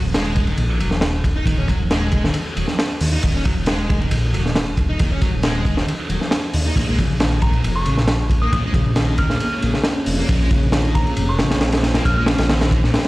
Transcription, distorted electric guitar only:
0.14 G#3
0.48 D#3
0.80 F#3
1.36 D#4
1.46 D#3
1.58 C#4
1.68 F#3
1.91 G#3
2.24 D#3
2.57 F#3
3.12 D#4
3.23 D#3
3.34 C#4
3.45 F#3
3.67 G#3
4.01 D#3
4.33 F#3
4.89 D#4
5.00 D#3
5.11 C#4
5.22 F#3
5.44 G#3
5.77 D#3
6.10 F#3
6.65 D#4
6.76 A#2
6.88 G#3
6.98 C#3
7.20 D#3
7.54 A#2
7.86 C#3
8.42 A#3
8.52 A#2
8.64 G#3
8.75 C#3
8.97 D#3
9.30 A#2
9.63 C#3
10.18 A#3
10.29 A#2
10.40 G#3
10.51 C#3
10.73 D#3
11.07 A#2
11.39 C#3
11.95 A#3
12.06 A#2
12.17 G#3
12.28 C#3
12.49 D#3
12.83 A#2

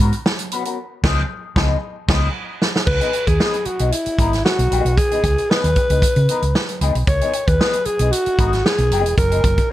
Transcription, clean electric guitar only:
0.01 B3 C#4 F#4 A#4
0.15 muted clean electric guitar stroke
0.27 muted clean electric guitar stroke
0.40 muted clean electric guitar stroke
0.52 B3 C#4 F#4 B4
0.66 B3 C#4 F#4 A#4
1.04 F3 B3 D#4 G#4
1.56 F3 B3 D#4 G#4
2.08 F3 B3 D#4 G#4
2.86 muted clean electric guitar stroke
3.01 E3 B3 D#4 G#4
3.14 muted clean electric guitar stroke
3.28 muted clean electric guitar stroke
3.40 E3 B3 D#4 G#4
3.66 muted clean electric guitar stroke
3.80 E3 B3 D#4 G#4
4.06 muted clean electric guitar stroke
4.19 E3 B3 D#4 A#4
4.33 muted clean electric guitar stroke
4.46 muted clean electric guitar stroke
4.59 muted clean electric guitar stroke
4.71 E3 B3 D#4 G#4
4.85 muted clean electric guitar stroke
4.98 muted clean electric guitar stroke
5.11 E3 B3 D#4 G#4
5.24 muted clean electric guitar stroke
5.39 muted clean electric guitar stroke
5.50 E3 B3 D#4 G#4
5.77 muted clean electric guitar stroke
5.91 E3 B3 D#4 G#4
6.17 muted clean electric guitar stroke
6.29 E3 B3 D#4 A#4
6.43 muted clean electric guitar stroke
6.55 muted clean electric guitar stroke
6.70 muted clean electric guitar stroke
6.81 E3 B3 D#4 G#4
6.95 muted clean electric guitar stroke
7.08 muted clean electric guitar stroke
7.22 E3 B3 D#4 G#4
7.35 muted clean electric guitar stroke
7.49 muted clean electric guitar stroke
7.60 E3 B3 D#4 G#4
7.87 muted clean electric guitar stroke
8.01 E3 B3 D#4 G#4
8.27 muted clean electric guitar stroke
8.39 E3 B3 D#4 A#4
8.53 muted clean electric guitar stroke
8.65 muted clean electric guitar stroke
8.80 muted clean electric guitar stroke
8.92 E3 B3 D#4 G#4
9.05 muted clean electric guitar stroke
9.17 muted clean electric guitar stroke
9.31 E3 A#3 D#4 G#4
9.43 muted clean electric guitar stroke
9.58 muted clean electric guitar stroke

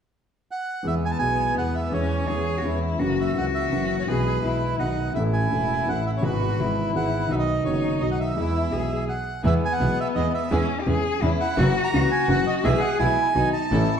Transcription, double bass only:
0.84 E2
1.21 B1
1.57 E2
1.93 E2
2.29 E2
2.65 E2
3.01 F#1
3.37 C#2
3.73 F#1
4.09 B1
4.44 B1
4.80 B1
5.16 A1
5.52 E1
5.88 A1
6.23 G#1
6.60 G#1
6.96 G#1
7.31 B1
7.66 F#1
8.02 B1
8.38 E2
8.73 B1
9.45 E2
9.81 B1
10.17 E2
10.52 E2
10.87 E2
11.22 E2
11.58 F#1
11.94 C#2
12.29 F#1
12.65 B1
13.00 B1
13.36 B1
13.72 A1

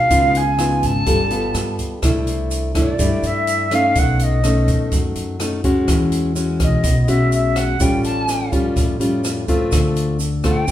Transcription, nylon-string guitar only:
0.11 C#3 B3 D#4 F4
0.59 B3 D#4 F4
1.07 G3 B3 F4 A4
1.31 B3 F4 A4
2.03 C3 A3 D4 E4
2.75 A3 D4 E4
2.99 G3 A3 D4 E4
3.71 A3 C#4 D#4
3.95 B2
4.45 A3 C#4 D#4
4.92 F#3
5.40 A3 C#4 D#4
5.64 G#3 C#4 F#4
5.88 E3
6.35 G#3 C#4 F#4
6.83 B2
7.08 G#3 C#4 F#4
7.80 A2 G3 C#4 F4
8.52 G3 C#4 F4
8.76 A2
9.00 G3 C#4 F4
9.48 A3 C4 F4
9.72 D3
10.44 A3 C4 F4

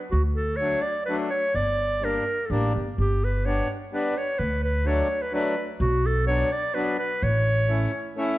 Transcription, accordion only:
0.60 F#3 A3 D4
1.08 F#3 A3 D4
2.01 G3 A#3 D4
2.49 G3 A#3 D4
3.45 G3 B3 D4
3.92 G3 B3 D4
4.85 F#3 A3 D4
5.32 F#3 A3 D4
6.26 F#3 B3 D4
6.74 F#3 B3 D4
7.68 A3 C#4 E4
8.16 A3 C#4 E4

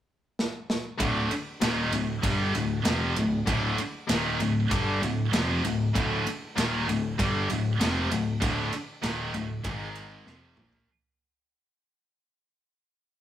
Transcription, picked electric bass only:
1.00 D1
1.31 muted picked electric bass stroke
1.63 D#1
1.93 D1
2.24 G1
2.55 D1
2.87 F1
3.17 D1
3.47 D1
3.79 muted picked electric bass stroke
4.10 D#1
4.40 D1
4.72 G1
5.02 D1
5.34 F1
5.65 D1
5.95 D1
6.27 muted picked electric bass stroke
6.58 D#1
6.89 D1
7.20 G1
7.51 D1
7.81 F1
8.12 D1
8.42 D1
8.73 muted picked electric bass stroke
9.04 D#1
9.35 D1
9.65 G#1
10.27 F1
10.58 A#1

